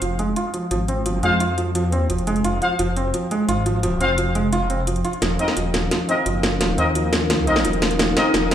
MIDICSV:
0, 0, Header, 1, 7, 480
1, 0, Start_track
1, 0, Key_signature, -4, "minor"
1, 0, Tempo, 346821
1, 1464, Time_signature, 4, 2, 24, 8
1, 11829, End_track
2, 0, Start_track
2, 0, Title_t, "Analog synth pad"
2, 0, Program_c, 0, 89
2, 0, Note_on_c, 0, 65, 79
2, 0, Note_on_c, 0, 72, 71
2, 0, Note_on_c, 0, 77, 93
2, 7168, Note_off_c, 0, 65, 0
2, 7168, Note_off_c, 0, 72, 0
2, 7224, Note_on_c, 0, 63, 80
2, 7225, Note_on_c, 0, 70, 75
2, 11829, Note_off_c, 0, 63, 0
2, 11829, Note_off_c, 0, 70, 0
2, 11829, Note_off_c, 0, 77, 0
2, 11829, End_track
3, 0, Start_track
3, 0, Title_t, "Brass ensemble"
3, 0, Program_c, 1, 61
3, 1703, Note_on_c, 1, 65, 97
3, 1703, Note_on_c, 1, 72, 88
3, 1703, Note_on_c, 1, 77, 107
3, 1833, Note_off_c, 1, 65, 0
3, 1833, Note_off_c, 1, 72, 0
3, 1833, Note_off_c, 1, 77, 0
3, 3623, Note_on_c, 1, 65, 91
3, 3623, Note_on_c, 1, 72, 82
3, 3623, Note_on_c, 1, 77, 100
3, 3705, Note_off_c, 1, 65, 0
3, 3705, Note_off_c, 1, 72, 0
3, 3705, Note_off_c, 1, 77, 0
3, 5544, Note_on_c, 1, 65, 98
3, 5544, Note_on_c, 1, 72, 90
3, 5544, Note_on_c, 1, 77, 110
3, 5674, Note_off_c, 1, 65, 0
3, 5674, Note_off_c, 1, 72, 0
3, 5674, Note_off_c, 1, 77, 0
3, 7463, Note_on_c, 1, 63, 83
3, 7463, Note_on_c, 1, 70, 76
3, 7463, Note_on_c, 1, 75, 93
3, 7544, Note_off_c, 1, 70, 0
3, 7545, Note_off_c, 1, 63, 0
3, 7545, Note_off_c, 1, 75, 0
3, 8424, Note_on_c, 1, 63, 87
3, 8424, Note_on_c, 1, 70, 77
3, 8424, Note_on_c, 1, 75, 94
3, 8505, Note_off_c, 1, 63, 0
3, 8505, Note_off_c, 1, 70, 0
3, 8505, Note_off_c, 1, 75, 0
3, 9384, Note_on_c, 1, 63, 89
3, 9384, Note_on_c, 1, 70, 80
3, 9384, Note_on_c, 1, 75, 93
3, 9465, Note_off_c, 1, 63, 0
3, 9465, Note_off_c, 1, 70, 0
3, 9465, Note_off_c, 1, 75, 0
3, 10343, Note_on_c, 1, 63, 91
3, 10343, Note_on_c, 1, 70, 81
3, 10343, Note_on_c, 1, 75, 101
3, 10425, Note_off_c, 1, 63, 0
3, 10425, Note_off_c, 1, 70, 0
3, 10425, Note_off_c, 1, 75, 0
3, 11303, Note_on_c, 1, 63, 91
3, 11304, Note_on_c, 1, 70, 83
3, 11304, Note_on_c, 1, 75, 102
3, 11385, Note_off_c, 1, 63, 0
3, 11385, Note_off_c, 1, 70, 0
3, 11385, Note_off_c, 1, 75, 0
3, 11783, Note_on_c, 1, 63, 89
3, 11783, Note_on_c, 1, 70, 86
3, 11783, Note_on_c, 1, 75, 100
3, 11829, Note_off_c, 1, 63, 0
3, 11829, Note_off_c, 1, 70, 0
3, 11829, Note_off_c, 1, 75, 0
3, 11829, End_track
4, 0, Start_track
4, 0, Title_t, "Felt piano"
4, 0, Program_c, 2, 0
4, 23, Note_on_c, 2, 53, 74
4, 175, Note_off_c, 2, 53, 0
4, 264, Note_on_c, 2, 56, 75
4, 415, Note_off_c, 2, 56, 0
4, 504, Note_on_c, 2, 65, 100
4, 655, Note_off_c, 2, 65, 0
4, 743, Note_on_c, 2, 53, 74
4, 895, Note_off_c, 2, 53, 0
4, 984, Note_on_c, 2, 53, 102
4, 1075, Note_off_c, 2, 53, 0
4, 1223, Note_on_c, 2, 60, 80
4, 1375, Note_off_c, 2, 60, 0
4, 1463, Note_on_c, 2, 53, 82
4, 1615, Note_off_c, 2, 53, 0
4, 1704, Note_on_c, 2, 56, 75
4, 1855, Note_off_c, 2, 56, 0
4, 1943, Note_on_c, 2, 65, 103
4, 2095, Note_off_c, 2, 65, 0
4, 2183, Note_on_c, 2, 53, 76
4, 2335, Note_off_c, 2, 53, 0
4, 2423, Note_on_c, 2, 53, 101
4, 2514, Note_off_c, 2, 53, 0
4, 2664, Note_on_c, 2, 60, 75
4, 2815, Note_off_c, 2, 60, 0
4, 2904, Note_on_c, 2, 53, 75
4, 3055, Note_off_c, 2, 53, 0
4, 3143, Note_on_c, 2, 56, 78
4, 3295, Note_off_c, 2, 56, 0
4, 3384, Note_on_c, 2, 65, 99
4, 3535, Note_off_c, 2, 65, 0
4, 3624, Note_on_c, 2, 53, 73
4, 3775, Note_off_c, 2, 53, 0
4, 3863, Note_on_c, 2, 53, 104
4, 3954, Note_off_c, 2, 53, 0
4, 4104, Note_on_c, 2, 60, 80
4, 4255, Note_off_c, 2, 60, 0
4, 4344, Note_on_c, 2, 53, 80
4, 4495, Note_off_c, 2, 53, 0
4, 4584, Note_on_c, 2, 56, 79
4, 4735, Note_off_c, 2, 56, 0
4, 4824, Note_on_c, 2, 65, 100
4, 4975, Note_off_c, 2, 65, 0
4, 5064, Note_on_c, 2, 53, 79
4, 5215, Note_off_c, 2, 53, 0
4, 5304, Note_on_c, 2, 53, 100
4, 5395, Note_off_c, 2, 53, 0
4, 5543, Note_on_c, 2, 60, 75
4, 5695, Note_off_c, 2, 60, 0
4, 5783, Note_on_c, 2, 53, 81
4, 5935, Note_off_c, 2, 53, 0
4, 6023, Note_on_c, 2, 56, 80
4, 6175, Note_off_c, 2, 56, 0
4, 6263, Note_on_c, 2, 65, 101
4, 6415, Note_off_c, 2, 65, 0
4, 6503, Note_on_c, 2, 60, 74
4, 6655, Note_off_c, 2, 60, 0
4, 6743, Note_on_c, 2, 53, 75
4, 6971, Note_off_c, 2, 53, 0
4, 6984, Note_on_c, 2, 65, 80
4, 7075, Note_off_c, 2, 65, 0
4, 7224, Note_on_c, 2, 53, 94
4, 7315, Note_off_c, 2, 53, 0
4, 7463, Note_on_c, 2, 60, 69
4, 7615, Note_off_c, 2, 60, 0
4, 7703, Note_on_c, 2, 53, 71
4, 7855, Note_off_c, 2, 53, 0
4, 7944, Note_on_c, 2, 53, 75
4, 8095, Note_off_c, 2, 53, 0
4, 8184, Note_on_c, 2, 53, 89
4, 8275, Note_off_c, 2, 53, 0
4, 8424, Note_on_c, 2, 60, 73
4, 8575, Note_off_c, 2, 60, 0
4, 8664, Note_on_c, 2, 53, 72
4, 8815, Note_off_c, 2, 53, 0
4, 8904, Note_on_c, 2, 53, 73
4, 9055, Note_off_c, 2, 53, 0
4, 9143, Note_on_c, 2, 53, 98
4, 9234, Note_off_c, 2, 53, 0
4, 9383, Note_on_c, 2, 60, 76
4, 9535, Note_off_c, 2, 60, 0
4, 9622, Note_on_c, 2, 53, 74
4, 9774, Note_off_c, 2, 53, 0
4, 9863, Note_on_c, 2, 53, 77
4, 10015, Note_off_c, 2, 53, 0
4, 10103, Note_on_c, 2, 53, 97
4, 10194, Note_off_c, 2, 53, 0
4, 10343, Note_on_c, 2, 60, 75
4, 10495, Note_off_c, 2, 60, 0
4, 10583, Note_on_c, 2, 53, 74
4, 10735, Note_off_c, 2, 53, 0
4, 10823, Note_on_c, 2, 53, 76
4, 10975, Note_off_c, 2, 53, 0
4, 11063, Note_on_c, 2, 53, 98
4, 11154, Note_off_c, 2, 53, 0
4, 11304, Note_on_c, 2, 60, 75
4, 11455, Note_off_c, 2, 60, 0
4, 11543, Note_on_c, 2, 53, 107
4, 11634, Note_off_c, 2, 53, 0
4, 11784, Note_on_c, 2, 60, 82
4, 11829, Note_off_c, 2, 60, 0
4, 11829, End_track
5, 0, Start_track
5, 0, Title_t, "Detuned saw bass"
5, 0, Program_c, 3, 39
5, 23, Note_on_c, 3, 29, 97
5, 484, Note_off_c, 3, 29, 0
5, 983, Note_on_c, 3, 32, 95
5, 1684, Note_off_c, 3, 32, 0
5, 1702, Note_on_c, 3, 41, 95
5, 2533, Note_off_c, 3, 41, 0
5, 2533, Note_on_c, 3, 40, 95
5, 2884, Note_off_c, 3, 40, 0
5, 2903, Note_on_c, 3, 29, 97
5, 3364, Note_off_c, 3, 29, 0
5, 3383, Note_on_c, 3, 29, 97
5, 3604, Note_off_c, 3, 29, 0
5, 3863, Note_on_c, 3, 29, 95
5, 4324, Note_off_c, 3, 29, 0
5, 4823, Note_on_c, 3, 32, 96
5, 5524, Note_off_c, 3, 32, 0
5, 5544, Note_on_c, 3, 29, 93
5, 6245, Note_off_c, 3, 29, 0
5, 6264, Note_on_c, 3, 29, 98
5, 6965, Note_off_c, 3, 29, 0
5, 7224, Note_on_c, 3, 27, 96
5, 7445, Note_off_c, 3, 27, 0
5, 7703, Note_on_c, 3, 27, 96
5, 8164, Note_off_c, 3, 27, 0
5, 8663, Note_on_c, 3, 30, 98
5, 9364, Note_off_c, 3, 30, 0
5, 9383, Note_on_c, 3, 39, 95
5, 10564, Note_off_c, 3, 39, 0
5, 10583, Note_on_c, 3, 27, 98
5, 11044, Note_off_c, 3, 27, 0
5, 11063, Note_on_c, 3, 27, 97
5, 11284, Note_off_c, 3, 27, 0
5, 11543, Note_on_c, 3, 27, 101
5, 11829, Note_off_c, 3, 27, 0
5, 11829, End_track
6, 0, Start_track
6, 0, Title_t, "Riser"
6, 0, Program_c, 4, 103
6, 7224, Note_on_c, 4, 60, 82
6, 11829, Note_off_c, 4, 60, 0
6, 11829, End_track
7, 0, Start_track
7, 0, Title_t, "Drums"
7, 23, Note_on_c, 9, 42, 97
7, 162, Note_off_c, 9, 42, 0
7, 263, Note_on_c, 9, 42, 67
7, 401, Note_off_c, 9, 42, 0
7, 503, Note_on_c, 9, 42, 88
7, 642, Note_off_c, 9, 42, 0
7, 743, Note_on_c, 9, 42, 68
7, 881, Note_off_c, 9, 42, 0
7, 983, Note_on_c, 9, 42, 96
7, 1122, Note_off_c, 9, 42, 0
7, 1223, Note_on_c, 9, 42, 69
7, 1362, Note_off_c, 9, 42, 0
7, 1463, Note_on_c, 9, 42, 94
7, 1602, Note_off_c, 9, 42, 0
7, 1703, Note_on_c, 9, 42, 70
7, 1842, Note_off_c, 9, 42, 0
7, 1943, Note_on_c, 9, 42, 92
7, 2081, Note_off_c, 9, 42, 0
7, 2184, Note_on_c, 9, 42, 66
7, 2322, Note_off_c, 9, 42, 0
7, 2423, Note_on_c, 9, 42, 86
7, 2561, Note_off_c, 9, 42, 0
7, 2663, Note_on_c, 9, 42, 64
7, 2801, Note_off_c, 9, 42, 0
7, 2903, Note_on_c, 9, 42, 89
7, 3023, Note_off_c, 9, 42, 0
7, 3023, Note_on_c, 9, 42, 37
7, 3143, Note_off_c, 9, 42, 0
7, 3143, Note_on_c, 9, 42, 66
7, 3263, Note_off_c, 9, 42, 0
7, 3263, Note_on_c, 9, 42, 36
7, 3383, Note_off_c, 9, 42, 0
7, 3383, Note_on_c, 9, 42, 87
7, 3522, Note_off_c, 9, 42, 0
7, 3623, Note_on_c, 9, 42, 66
7, 3762, Note_off_c, 9, 42, 0
7, 3863, Note_on_c, 9, 42, 90
7, 4001, Note_off_c, 9, 42, 0
7, 4103, Note_on_c, 9, 42, 65
7, 4242, Note_off_c, 9, 42, 0
7, 4344, Note_on_c, 9, 42, 86
7, 4482, Note_off_c, 9, 42, 0
7, 4583, Note_on_c, 9, 42, 64
7, 4722, Note_off_c, 9, 42, 0
7, 4824, Note_on_c, 9, 42, 88
7, 4962, Note_off_c, 9, 42, 0
7, 5064, Note_on_c, 9, 42, 63
7, 5203, Note_off_c, 9, 42, 0
7, 5304, Note_on_c, 9, 42, 87
7, 5443, Note_off_c, 9, 42, 0
7, 5544, Note_on_c, 9, 42, 65
7, 5682, Note_off_c, 9, 42, 0
7, 5783, Note_on_c, 9, 42, 88
7, 5922, Note_off_c, 9, 42, 0
7, 6024, Note_on_c, 9, 42, 62
7, 6162, Note_off_c, 9, 42, 0
7, 6263, Note_on_c, 9, 42, 85
7, 6401, Note_off_c, 9, 42, 0
7, 6503, Note_on_c, 9, 42, 62
7, 6642, Note_off_c, 9, 42, 0
7, 6743, Note_on_c, 9, 42, 86
7, 6863, Note_off_c, 9, 42, 0
7, 6863, Note_on_c, 9, 42, 34
7, 6983, Note_off_c, 9, 42, 0
7, 6983, Note_on_c, 9, 42, 63
7, 7104, Note_off_c, 9, 42, 0
7, 7104, Note_on_c, 9, 42, 35
7, 7224, Note_off_c, 9, 42, 0
7, 7224, Note_on_c, 9, 38, 50
7, 7224, Note_on_c, 9, 42, 88
7, 7362, Note_off_c, 9, 38, 0
7, 7362, Note_off_c, 9, 42, 0
7, 7463, Note_on_c, 9, 42, 67
7, 7584, Note_on_c, 9, 38, 45
7, 7602, Note_off_c, 9, 42, 0
7, 7704, Note_on_c, 9, 42, 88
7, 7723, Note_off_c, 9, 38, 0
7, 7842, Note_off_c, 9, 42, 0
7, 7944, Note_on_c, 9, 38, 52
7, 7944, Note_on_c, 9, 42, 61
7, 8083, Note_off_c, 9, 38, 0
7, 8083, Note_off_c, 9, 42, 0
7, 8185, Note_on_c, 9, 38, 49
7, 8185, Note_on_c, 9, 42, 83
7, 8323, Note_off_c, 9, 38, 0
7, 8323, Note_off_c, 9, 42, 0
7, 8425, Note_on_c, 9, 42, 62
7, 8563, Note_off_c, 9, 42, 0
7, 8664, Note_on_c, 9, 42, 86
7, 8803, Note_off_c, 9, 42, 0
7, 8904, Note_on_c, 9, 38, 58
7, 8904, Note_on_c, 9, 42, 66
7, 9042, Note_off_c, 9, 38, 0
7, 9042, Note_off_c, 9, 42, 0
7, 9144, Note_on_c, 9, 38, 59
7, 9144, Note_on_c, 9, 42, 91
7, 9282, Note_off_c, 9, 38, 0
7, 9282, Note_off_c, 9, 42, 0
7, 9384, Note_on_c, 9, 42, 67
7, 9523, Note_off_c, 9, 42, 0
7, 9623, Note_on_c, 9, 42, 92
7, 9762, Note_off_c, 9, 42, 0
7, 9863, Note_on_c, 9, 38, 68
7, 9863, Note_on_c, 9, 42, 68
7, 10002, Note_off_c, 9, 38, 0
7, 10002, Note_off_c, 9, 42, 0
7, 10103, Note_on_c, 9, 38, 64
7, 10103, Note_on_c, 9, 42, 88
7, 10241, Note_off_c, 9, 38, 0
7, 10241, Note_off_c, 9, 42, 0
7, 10343, Note_on_c, 9, 42, 65
7, 10463, Note_on_c, 9, 38, 61
7, 10482, Note_off_c, 9, 42, 0
7, 10583, Note_on_c, 9, 42, 93
7, 10601, Note_off_c, 9, 38, 0
7, 10703, Note_off_c, 9, 42, 0
7, 10703, Note_on_c, 9, 42, 37
7, 10823, Note_off_c, 9, 42, 0
7, 10823, Note_on_c, 9, 38, 74
7, 10823, Note_on_c, 9, 42, 66
7, 10944, Note_off_c, 9, 42, 0
7, 10944, Note_on_c, 9, 42, 38
7, 10962, Note_off_c, 9, 38, 0
7, 11063, Note_off_c, 9, 42, 0
7, 11063, Note_on_c, 9, 38, 78
7, 11063, Note_on_c, 9, 42, 94
7, 11202, Note_off_c, 9, 38, 0
7, 11202, Note_off_c, 9, 42, 0
7, 11303, Note_on_c, 9, 38, 83
7, 11303, Note_on_c, 9, 42, 73
7, 11441, Note_off_c, 9, 38, 0
7, 11441, Note_off_c, 9, 42, 0
7, 11543, Note_on_c, 9, 38, 79
7, 11543, Note_on_c, 9, 42, 98
7, 11682, Note_off_c, 9, 38, 0
7, 11682, Note_off_c, 9, 42, 0
7, 11783, Note_on_c, 9, 38, 82
7, 11783, Note_on_c, 9, 42, 70
7, 11829, Note_off_c, 9, 38, 0
7, 11829, Note_off_c, 9, 42, 0
7, 11829, End_track
0, 0, End_of_file